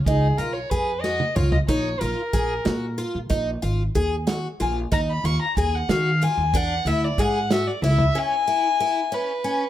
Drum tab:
HH |x-x-x-----|x-x-x-x-x-|x-x-x-x-x-|x-x-x-x-x-|
SD |------o---|------o---|------o---|------o---|
T1 |-------o--|----------|----------|----------|
T2 |--------o-|----------|----------|----------|
FT |---------o|----------|----------|----------|
BD |o---o-----|o---o-----|o---o-----|o---o-----|

HH |x-x-x-x---|----------|
SD |------o-o-|----------|
T1 |----------|----------|
T2 |----------|----------|
FT |---------o|----------|
BD |o---o-----|----------|